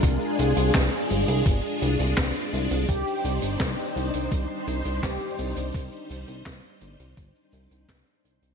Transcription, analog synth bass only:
X:1
M:4/4
L:1/16
Q:1/4=84
K:Cm
V:1 name="Analog synth bass" clef=bass
C,, z C,, C,, C,, z G,,, C,, G,,, z C,, C,, C,, z C,, C,, | C,, z C,, G,,, C,, z C,, C,, C,, z C,, C,, C,, z C,, C,, | C,, z C,, C,, C,, z G,,, C,, G,,, z C,, C,, C,, z C,, C,, |]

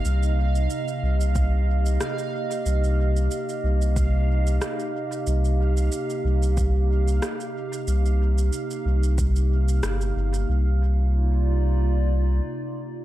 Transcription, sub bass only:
X:1
M:4/4
L:1/8
Q:"Swing 16ths" 1/4=92
K:Cm
V:1 name="Sub bass" clef=bass
C,,2 z C,,3 z2 | C,,2 z C,,3 z2 | C,,2 z C,,3 z2 | C,,2 z C,,3 G,,, G,,, |
C,,6 z2 |]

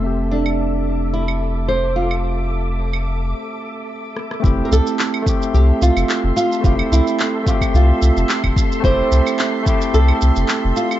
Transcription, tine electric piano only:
X:1
M:4/4
L:1/8
Q:"Swing 16ths" 1/4=109
K:F
V:1 name="Tine electric piano"
[A,CGe]8- | [A,CGe]4 z4 | [A,CEG]3 [A,CGe]4- [A,CGe] | [A,CEG]3 [A,CGe]4- [A,CGe] |
[A,CEG]3 [A,CEG]4- [A,CEG] |]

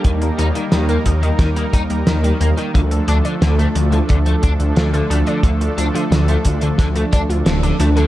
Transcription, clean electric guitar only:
X:1
M:4/4
L:1/16
Q:1/4=89
K:Dm
V:1 name="Clean electric guitar" clef=bass
_E, z _E E, E, B, z E, E, B, E z E, E, B, E, | D, z D D, D, A, z D, D, A, D z D, D, A, D, | D, z D D, D, A, z D, D, A, D z D, D, A, D, |]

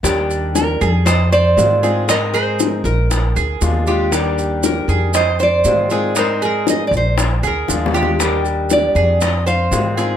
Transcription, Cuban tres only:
X:1
M:4/4
L:1/8
Q:1/4=118
K:Eb
V:1 name="Cuban tres"
z3 A e c2 A | E A2 z2 A2 G- | G z2 A e c2 A | E A2 z2 A2 G- |
G z2 A e c2 A |]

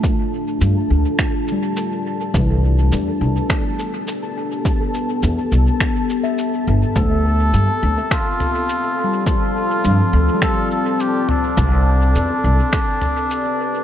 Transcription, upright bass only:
X:1
M:4/4
L:1/8
Q:"Swing 16ths" 1/4=104
K:Ddor
V:1 name="Upright bass" clef=bass
z2 G,, D,, z4 | C,,2 E,, C,, z4 | z2 E,, C,, z3 G,,, | D,,2 G,, D,, z4 |
z2 G,, D,, z4 | C,,2 E,, C,, z4 |]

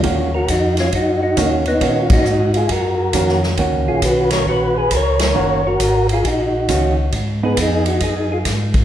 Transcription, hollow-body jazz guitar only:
X:1
M:4/4
L:1/8
Q:"Swing" 1/4=135
K:Ebm
V:1 name="Hollow-body jazz guitar"
[E,B,DG] z4 z [E,B,DG] z | [E,B,DG] z4 z [E,B,DG] z | [E,B,DG]4- [E,B,DG] z3 | [E,B,DG] z4 z [E,B,DG] z |
z [CE]3 z4 |]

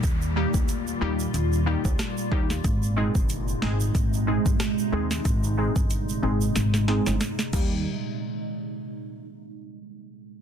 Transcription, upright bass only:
X:1
M:4/4
L:1/16
Q:"Swing 16ths" 1/4=92
K:Ablyd
V:1 name="Upright bass" clef=bass
E,,3 D,,3 E,,2 E,,3 D,, z2 E,,2 | A,,,3 G,,,3 A,,,2 A,,,3 G,,, z2 E,,2 | A,,,3 G,,,3 A,,,2 A,,,3 G,,, z2 E,,2 | z16 |]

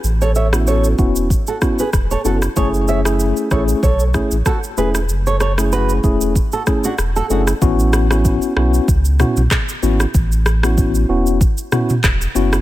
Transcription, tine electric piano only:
X:1
M:4/4
L:1/16
Q:"Swing 16ths" 1/4=95
K:A
V:1 name="Tine electric piano"
z3 [B,CEF]3 [B,CEF]2 z2 [B,CEF] z3 [B,CEF] z | [A,CEG]3 [A,CEG]3 [A,CEG]2 z2 [A,CEG] z3 [A,CEG] z | z3 [A,CEG]3 [A,CEG]2 z2 [A,CEG] z3 [A,CEG] z | [B,CEF]3 [B,CEF]3 [B,CEF]2 z2 [B,CEF] z3 [B,CEF] z |
z3 [B,CEF]3 [B,CEF]2 z2 [B,CEF] z3 [B,CEF] z |]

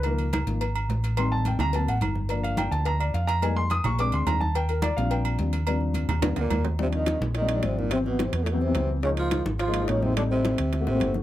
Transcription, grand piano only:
X:1
M:4/4
L:1/16
Q:1/4=213
K:Eb
V:1 name="Grand piano"
B6 z8 z2 | c'2 =a2 g2 b2 a2 ^f2 z4 | z2 f2 g2 =a2 b2 d2 f2 b2 | a2 c'2 e'2 _d'2 =d'2 c'2 b2 =a2 |
g2 B2 d2 f2 g8 | z16 | [F,G,CD]6 z3 [F,G,CD] z [F,G,CD] [F,G,CD]3 z | [=E,_G,=B,C]6 z3 [E,G,B,C] z [E,G,B,C] [E,G,B,C]3 z |
[F,A,B,E]6 z3 [F,A,B,E] z [F,A,B,E] [F,A,B,E]3 z | [G,=A,CE]6 z3 [A,B,C^F] z [A,B,CF] [A,B,CF]3 z |]
V:2 name="Grand piano"
[E,F,B,]2 z4 [E,F,B,]2 z8 | [E,G,C]8 [^F,B,C]2 z6 | [F,B,D]16 | [G,A,B,E]2 z6 [A,CD]6 z2 |
z6 [F,G,CD]6 [F,G,CD]2 z2 | [F,G,CD]6 z2 [F,G,CD]2 z6 | z16 | z16 |
z16 | z16 |]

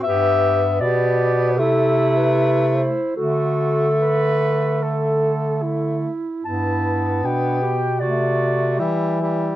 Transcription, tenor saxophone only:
X:1
M:4/4
L:1/8
Q:1/4=75
K:G
V:1 name="Tenor saxophone"
B,2 B,2 A,4 | A,6- A, z | B,4 A,2 G, G, |]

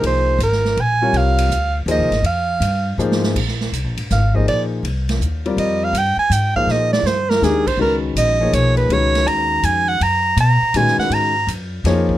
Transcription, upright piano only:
X:1
M:3/4
L:1/8
Q:"Swing" 1/4=162
K:Fm
V:1 name="Upright piano"
[F,B,EAc]2 z3 [C,G,FBd]- | [C,G,FBd]2 z2 [F,B,EAc] z | z4 [F,B,EAc]2 | [K:Bbphr] z4 z [F,B,EA=c]- |
[F,B,EA=c]2 z3 [=G,=CFB=d]- | [=G,=CFB=d]2 z3 [F,B,EA=c]- | [F,B,EA=c]2 z2 [E,A,=D=GB] z | [E,A,DGc]3 [F,B,EAd]3 |
[E,A,DGc]4- [E,A,DGc] z | z4 [E,A,DGc]2- | [E,A,DGc] z3 [F,B,EAd]2 |]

